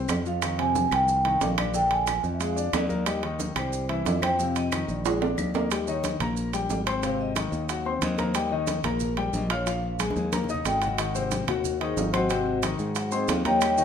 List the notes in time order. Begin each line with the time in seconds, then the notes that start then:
Already playing: C4 C5
0.09 F2, high conga, high timbale, low timbale, claves, maracas
0.26 F3 F4 F5, maracas
0.42 D#3 D#4, high conga, high timbale, claves, maracas
0.58 C3 C4 G#5, high timbale
0.75 high conga, low timbale, maracas
0.91 C2 F3 F4 G5, high conga, high timbale, claves, maracas
1.08 high conga, maracas
1.25 D#3 D#4, high conga, high timbale
1.41 A#1 F5, high conga, high timbale, low timbale, maracas
1.58 D4 D5, high conga, high timbale, claves, maracas
1.74 D3 D4 G5, high conga, maracas
1.91 G#5, high conga, high timbale
2.07 F3 F4, high conga, high timbale, low timbale, claves, maracas
2.24 F2, high conga, maracas
2.33 E5
2.40 G#3 G#4 F5, high timbale, maracas
2.56 D4 D5, high conga, maracas
2.73 D#2 D5, high conga, high timbale, low timbale, claves, maracas
2.89 A#3 A#4, high conga, maracas
3.06 G3 G4 D#5, high timbale, claves, maracas
3.23 D#3 D#4, high conga, high timbale
3.39 high conga, low timbale, maracas
3.56 C2 G3 G4 C5, high conga, high timbale, claves, maracas
3.73 high conga, maracas
3.89 E3 E4 E5, high conga, high timbale
4.05 F2, high conga, high timbale, low timbale, maracas
4.22 C4 C5 G5, high conga, high timbale, claves, maracas
4.39 C3 C4 F5, high conga, maracas
4.55 D#5, high conga, high timbale, maracas
4.72 D#3 D#4, high conga, high timbale, low timbale, claves, maracas
4.88 A#1 D5, high conga, maracas
5.05 G#3 G#4, high conga, high timbale, maracas
5.21 D4 D5, high conga, low timbale
5.38 D#2, high conga, claves, maracas
5.54 A#3 A#4, high conga, low timbale, maracas
5.71 G3 G4 D#5 G5, high conga, high timbale, maracas
5.87 D#3 D#4 C#5 D#5, high conga, maracas
6.04 high conga, high timbale, maracas
6.20 A#1 A#3 A#4 A#5, high conga, low conga, high timbale, maracas
6.37 high conga, maracas
6.53 G3 G4 G5, high conga, high timbale, maracas
6.69 G#1, high conga, low timbale, maracas
6.86 C4 C5 C6, high timbale, maracas
7.02 C3 C4 C5 F5, high conga, high timbale, maracas
7.20 D#5, high conga
7.36 D#3 D#4 D#5, high conga, high timbale, maracas
7.52 D#2, high conga, maracas
7.69 F#3 F#4 F#5, high conga, high timbale, maracas
7.85 C4 C5 C6, high conga
8.02 D#2 D#5, high conga, high timbale, maracas
8.18 A#3 A#4 C5 A#5, high conga, high timbale, maracas
8.34 G3 G4 D#5 G5, high conga, high timbale, maracas
8.51 D#3 D#4 D#5, high conga
8.67 high conga, high timbale, maracas
8.84 A#1 A#3 A#4 A#5, high conga, low conga, high timbale, maracas
9.00 high conga, low conga, maracas
9.17 G3 G4 G5, high conga, high timbale
9.33 A#1 D#5, high conga, maracas
9.50 F4 C#5 F5 F6, high timbale, maracas
9.66 F3 F4 F5, high conga, high timbale, maracas
9.83 high conga
9.99 G#3 G#4 G#5, high conga, high timbale, maracas
10.10 high conga
10.16 D#2, maracas
10.32 A#3 A#4 A#5, high conga, high timbale, maracas
10.44 low conga
10.49 D#4 D#5 D#6, maracas
10.54 low conga
10.65 G#1 G5, high timbale, low timbale, maracas
10.82 F#3 F#4 D#5 F#5, high timbale, maracas
10.87 low conga
10.98 D#3 D#4 D#5 F#5, high conga, high timbale, maracas
11.15 C3 C4 C5, high conga, maracas
11.31 high conga, high timbale, maracas
11.47 D#2 F#3 F#4 F#5, high conga, low conga, high timbale, maracas
11.64 high conga, low conga, maracas
11.81 D#3 D#4 G#4 C5 D#5, high conga, high timbale
11.97 G#1 F4 F5, high conga, low timbale, maracas
12.13 C4 F#4 C5 D#5 F#5 C6, high conga, high timbale, maracas
12.29 C3 C4 C5, high timbale, maracas
12.47 high conga
12.63 D#3 D#4 D#5, high conga, high timbale, maracas
12.79 G#2, high conga, maracas
12.95 F#3 F#4 F#5, high conga, high timbale, maracas
13.12 C4 D#4 G#4 C5 D#5 C6, high conga, maracas
13.28 D#2 F4 F5, high conga, high timbale, low timbale, maracas
13.45 A#3 G4 A#4 C#5 D#5 G5 A#5, high conga, high timbale, maracas
13.61 G3 G4 G5, high timbale, claves, maracas
13.78 D#3 D#4 D#5, high conga, maracas